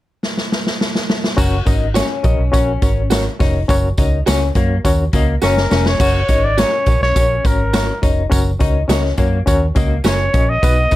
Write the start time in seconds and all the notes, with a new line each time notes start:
0.23 snare
0.37 snare
0.52 snare
0.66 snare
0.81 snare
0.95 snare
1.10 snare
1.24 snare
1.37 F#1 C#4 F#4 A#4 C#5, kick, crash, tambourine
1.65 G#1 C#4 D#4 F#4 A#4 D#5, kick, closed hi-hat, tambourine
1.94 C#4 F#4 A#4 C#5, snare, closed hi-hat, tambourine
2.23 A#1 C#4 F#4 A#4 D#5, kick, closed hi-hat, tambourine
2.39 B1
2.52 A#1 C#4 F#4 A#4 C#5, kick, closed hi-hat, tambourine
2.82 G#1 C#4 F#4 A#4 C#5, kick, closed hi-hat, tambourine
3.10 C#4 F#4 A#4 C#5, snare, closed hi-hat, tambourine
3.39 F1 C#4 D#4 F#4 A#4 C#5, kick, snare, open hi-hat, tambourine
3.68 F#1 C#4 F#4 A#4 C#5, kick, closed hi-hat, tambourine
3.98 C#2 C#4 D#4 F#4 A#4 C#5, kick, closed hi-hat, tambourine
4.26 C#2 C#4 F#4 A#4 C#5, snare, closed hi-hat, tambourine
4.55 F#2 A#3 C#4 F#4 A#4 C#5, kick, closed hi-hat, tambourine
4.85 D#2 C#4 F#4 A#4 C#5, kick, closed hi-hat, tambourine
5.13 C#2 A#3 C#4 F#4 A#4 D#5, kick, closed hi-hat, tambourine
5.42 F#1 C#4 F#4 A#4 C#5, snare, tambourine
5.57 snare
5.71 F1 C#4 F#4 A#4 C#5, snare, tambourine
5.86 C#5, snare
6.00 F#1 C#4 F#4 A#4 C#5, kick, crash, tambourine
6.29 G#1 C#4 D#4 F#4 A#4 C#5, kick, closed hi-hat, tambourine
6.45 D5
6.58 C#4 F#4 A#4 C#5, snare, closed hi-hat, tambourine
6.86 A#1 C#4 F#4 A#4 C#5, kick, closed hi-hat, tambourine
7.01 B1 C#5, snare
7.15 A#1 C#4 F#4 A#4 C#5, kick, closed hi-hat, tambourine
7.44 G#1 C#4 F#4 A#4 C#5, kick, closed hi-hat, tambourine
7.73 C#4 F#4 A#4 C#5, snare, closed hi-hat, tambourine
8.02 F1 C#4 D#4 F#4 A#4 C#5, kick, closed hi-hat, tambourine
8.30 F#1 C#4 F#4 A#4 C#5, kick, closed hi-hat, tambourine
8.59 C#2 C#4 D#4 F#4 A#4 C#5, kick, closed hi-hat, tambourine
8.88 C#2 C#4 F#4 A#4 C#5 D#5, snare, closed hi-hat, tambourine
9.05 snare
9.17 F#2 A#3 C#4 F#4 A#4 C#5, kick, closed hi-hat, tambourine
9.46 D#2 C#4 F#4 A#4 C#5, kick, closed hi-hat, tambourine
9.75 C#2 A#3 C#4 F#4 A#4 D#5, kick, closed hi-hat, tambourine
10.04 F#1 C#4 F#4 A#4 C#5, snare, closed hi-hat, tambourine
10.33 A#1 C#4 F#4 A#4 D#5, kick, closed hi-hat, tambourine
10.50 D#5
10.62 B1 B3 D#4 F#4 B4, kick, closed hi-hat, tambourine
10.91 C#2 B3 D#4 F#4 B4, kick, closed hi-hat, tambourine